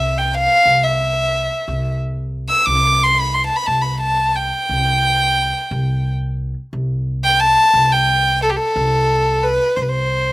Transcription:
0.00 0.45 C2 loud
0.00 0.19 E5 medium
0.18 0.36 G5 medium
0.34 0.85 F5 loud
0.66 1.47 C2 medium
0.83 1.94 E5 medium
1.68 2.49 C2 medium
2.49 2.67 E6 medium
2.66 3.49 C2 medium
2.66 3.05 D6 loud
3.04 3.22 C6 medium
3.21 3.35 B5 medium
3.34 3.45 C6 medium
3.46 3.57 A5 medium
3.56 3.68 B5 medium
3.66 4.50 C2 medium
3.66 3.83 A5 medium
3.81 4.00 B5 medium
4.00 4.37 A5 medium
4.36 6.12 G5 loud
4.69 5.51 C2 medium
5.71 6.53 C2 loud
6.73 7.54 C2 medium
7.24 7.41 G5 loud
7.40 7.94 A5 loud
7.74 8.55 C2 loud
7.92 8.42 G5 loud
8.42 8.51 A4 loud
8.50 8.58 G4 medium
8.56 9.45 A4 loud
8.76 9.57 C2 loud
9.43 9.78 B4 loud
9.76 10.33 C2 medium
9.76 9.84 C5 medium
9.82 9.90 B4 medium
9.89 10.33 C5 medium

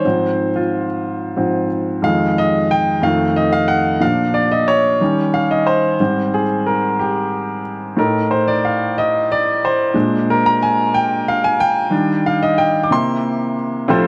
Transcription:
0.00 0.57 C5 medium
0.05 0.49 G#2 soft
0.05 0.49 F3 soft
0.05 0.49 C4 soft
0.56 0.86 F4 medium
1.36 1.66 G#2 soft
1.36 1.67 F3 soft
1.36 1.67 C4 soft
2.02 2.98 F2 soft
2.02 2.98 D#3 soft
2.02 2.98 G#3 soft
2.02 2.38 F5 medium
2.38 2.71 D#5 medium
2.71 3.04 G5 medium
3.01 3.97 F2 soft
3.01 3.97 D#3 soft
3.01 3.98 A3 medium
3.01 3.34 F5 medium
3.36 3.53 D#5 medium
3.53 3.69 F5 medium
3.68 4.02 F#5 medium
4.00 4.45 A#2 soft
4.00 4.45 F3 soft
4.00 4.45 D4 medium
4.00 4.32 F5 medium
4.34 4.51 D5 medium
4.52 4.68 D#5 medium
4.68 5.36 C#5 medium
5.00 5.95 D#3 soft
5.00 5.96 G3 soft
5.00 5.96 C#4 medium
5.34 5.51 F5 medium
5.51 5.67 D#5 medium
5.67 6.34 C5 medium
6.00 6.44 G#2 soft
6.00 6.44 G3 soft
6.00 6.44 C4 soft
6.34 6.41 G#4 medium
6.67 6.97 A#4 medium
6.99 7.61 G4 medium
7.97 8.92 A2 soft
7.97 8.93 D#4 soft
7.97 8.92 A4 soft
7.97 8.32 A#4 medium
8.31 8.36 C5 medium
8.48 8.53 D5 medium
8.65 8.95 F5 medium
8.98 9.31 D#5 medium
9.32 9.39 D5 medium
9.65 10.31 C5 medium
9.94 11.88 A#2 soft
9.94 11.88 G#3 soft
9.94 11.88 D4 medium
10.30 10.46 A#4 medium
10.46 10.62 A#5 medium
10.63 10.95 G#5 medium
10.94 11.28 G5 medium
11.28 11.44 F5 medium
11.44 11.60 G#5 medium
11.60 12.28 G5 loud
11.90 12.35 D#3 soft
11.90 12.35 G3 soft
11.90 12.36 D4 medium
12.26 12.43 F5 medium
12.43 12.59 D#5 medium
12.58 12.82 G5 medium
12.83 12.91 D6 medium
12.91 13.85 C3 medium
12.91 13.85 A#3 medium
12.91 13.86 E4 medium
12.91 13.53 C6 medium
13.88 14.07 F1 medium
13.88 14.07 F2 medium
13.88 14.07 C4 medium
13.88 14.07 E4 medium
13.88 14.07 F4 medium
13.88 14.07 A4 medium
13.88 14.07 C5 medium

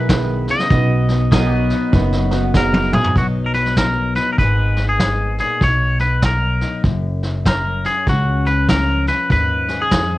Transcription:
0.00 0.48 B1 medium
0.00 0.71 E3 medium
0.00 1.11 B3 medium
0.00 0.68 G#4 medium
0.00 0.71 G#4 medium
0.00 0.51 B4 medium
0.00 0.69 B4 medium
0.00 0.69 G#5 medium
0.09 0.48 D#3 medium
0.09 0.66 B3 medium
0.09 0.67 G#4 medium
0.09 0.67 B4 medium
0.09 0.66 E5 medium
0.09 kick medium
0.09 snare loud
0.09 hi-hat pedal medium
0.47 0.71 C#3 medium
0.47 2.52 D#5 loud
0.47 snare soft
0.59 snare soft
0.70 1.71 B1 loud
0.70 1.94 B2 medium
0.70 1.28 B3 medium
0.70 1.28 D#4 medium
0.70 1.28 F#4 medium
0.70 1.28 B4 loud
0.70 kick loud
0.70 snare soft
1.08 2.31 B3 medium
1.08 snare soft
1.32 2.55 F#3 medium
1.32 1.89 B3 medium
1.32 3.15 B3 medium
1.32 1.89 D#4 medium
1.32 1.89 F#4 medium
1.32 1.57 G#4 medium
1.32 1.90 A#4 loud
1.32 3.15 D#5 medium
1.32 kick medium
1.32 snare loud
1.32 hi-hat pedal medium
1.57 3.14 F#4 medium
1.70 3.14 D#4 medium
1.70 snare soft
1.92 2.93 F#1 medium
1.92 3.17 F#2 medium
1.92 2.27 B3 medium
1.92 2.28 D#4 medium
1.92 2.28 F#4 medium
1.92 2.28 B4 loud
1.92 kick loud
1.92 snare soft
2.12 snare soft
2.30 2.52 B3 medium
2.30 3.14 B3 medium
2.30 2.52 D#4 medium
2.30 2.53 F#4 medium
2.30 2.53 B4 medium
2.30 2.42 D#5 medium
2.30 snare soft
2.44 2.54 F#5 medium
2.54 3.14 F#3 medium
2.54 3.12 B3 medium
2.54 3.12 D#4 medium
2.54 3.12 F#4 medium
2.54 3.12 G#4 medium
2.54 2.91 A#4 medium
2.54 2.90 F#5 medium
2.54 kick medium
2.54 snare medium
2.54 hi-hat pedal medium
2.74 high tom medium
2.92 3.18 G#4 medium
2.92 3.14 G#5 medium
2.92 mid tom medium
3.04 floor tom loud
3.15 4.16 B1 medium
3.15 4.40 B2 medium
3.15 3.77 F#3 medium
3.15 4.38 B3 medium
3.15 4.16 D#4 medium
3.15 3.26 F#4 medium
3.15 kick medium
3.15 snare soft
3.46 3.54 A#4 medium
3.53 3.76 B4 medium
3.53 snare soft
3.65 snare soft
3.77 4.37 F#3 medium
3.77 4.16 A#4 medium
3.77 kick medium
3.77 snare medium
3.77 hi-hat pedal medium
4.15 4.37 D#4 soft
4.15 4.32 B4 medium
4.15 snare soft
4.33 4.38 A#4 medium
4.38 5.39 G#1 medium
4.38 5.00 G#2 medium
4.38 5.60 G#3 medium
4.38 5.60 B3 medium
4.38 4.85 B4 medium
4.38 kick medium
4.38 snare soft
4.42 5.61 D#4 medium
4.42 5.61 G#4 medium
4.76 snare soft
4.89 5.39 G#4 medium
4.99 5.39 G#2 medium
4.99 kick medium
4.99 snare medium
4.99 hi-hat pedal medium
5.38 5.63 A#2 medium
5.38 5.63 G#4 medium
5.38 snare soft
5.61 6.62 B1 medium
5.61 6.85 B2 medium
5.61 5.98 C#5 medium
5.61 kick medium
5.61 snare soft
5.99 6.24 B4 medium
5.99 snare soft
6.22 6.82 F#3 medium
6.22 6.82 A#4 medium
6.22 kick medium
6.22 snare medium
6.22 hi-hat pedal medium
6.61 6.83 D#4 medium
6.61 snare soft
6.84 7.85 F#1 medium
6.84 8.08 F#2 medium
6.84 kick medium
6.84 snare soft
7.23 snare soft
7.46 8.05 F#3 medium
7.46 7.86 A#4 medium
7.46 kick medium
7.46 snare medium
7.46 hi-hat pedal medium
7.84 8.09 C#4 medium
7.84 8.07 G#4 medium
7.84 snare soft
8.07 9.08 C#2 medium
8.07 8.70 C#3 medium
8.07 10.18 C#4 medium
8.07 8.48 F#4 medium
8.07 kick loud
8.07 snare soft
8.46 8.68 B4 medium
8.46 snare soft
8.69 9.91 F3 medium
8.69 9.05 A#4 medium
8.69 kick medium
8.69 snare loud
8.69 hi-hat pedal medium
9.07 9.31 B4 medium
9.07 snare soft
9.30 9.83 D#2 medium
9.30 10.18 G#2 medium
9.30 9.83 B4 medium
9.30 kick medium
9.30 snare soft
9.68 10.18 G#4 medium
9.68 snare soft
9.82 10.18 G#4 medium
9.91 10.18 F2 medium
9.91 10.18 F3 medium
9.91 kick medium
9.91 snare medium
9.91 hi-hat pedal medium

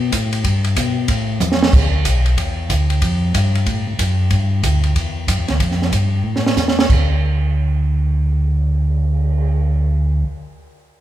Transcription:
0.00 0.12 B2 medium
0.12 0.44 A2 medium
0.12 kick soft
0.12 hi-hat pedal medium
0.12 ride medium
0.33 ride medium
0.44 0.76 G2 medium
0.44 kick soft
0.44 ride medium
0.64 ride soft
0.76 1.08 B2 medium
0.76 kick soft
0.76 hi-hat pedal medium
0.76 ride medium
1.08 1.40 A2 medium
1.08 kick soft
1.08 ride medium
1.40 1.72 E2 medium
1.40 hi-hat pedal medium
1.40 mid tom soft
1.52 snare medium
1.63 snare medium
1.73 2.04 D2 medium
1.73 kick medium
1.73 crash medium
2.05 2.37 B1 medium
2.05 kick soft
2.05 hi-hat pedal medium
2.05 ride medium
2.26 ride soft
2.37 2.69 E2 medium
2.37 kick soft
2.37 ride medium
2.70 3.01 D2 medium
2.70 kick soft
2.70 hi-hat pedal medium
2.70 ride medium
2.90 ride soft
3.01 3.33 F2 medium
3.01 kick soft
3.01 ride medium
3.34 3.66 G2 loud
3.34 kick soft
3.34 hi-hat pedal medium
3.34 ride medium
3.55 ride soft
3.66 3.85 A2 medium
3.66 kick soft
3.66 ride medium
3.87 3.93 A2 soft
3.99 4.30 F#2 medium
3.99 kick soft
3.99 hi-hat pedal soft
3.99 ride medium
4.30 4.62 G2 medium
4.30 kick soft
4.30 ride medium
4.63 4.95 D2 medium
4.63 kick soft
4.63 hi-hat pedal medium
4.63 ride medium
4.83 ride soft
4.95 5.27 E2 medium
4.95 kick soft
4.95 ride medium
5.28 5.38 F#2 medium
5.28 kick soft
5.28 hi-hat pedal medium
5.28 ride medium
5.39 5.50 E2 medium
5.48 5.60 D2 medium
5.48 snare soft
5.48 ride soft
5.60 5.91 F2 medium
5.60 kick soft
5.60 ride medium
5.71 snare soft
5.82 snare soft
5.92 6.24 G2 medium
5.92 kick soft
5.92 hi-hat pedal medium
5.92 ride medium
6.24 6.56 A2 medium
6.36 snare soft
6.46 snare medium
6.56 6.88 E2 medium
6.56 snare medium
6.56 hi-hat pedal soft
6.68 snare medium
6.79 snare medium
6.90 10.24 D2 medium
6.90 kick medium
6.90 crash medium
7.10 cymbal swell soft

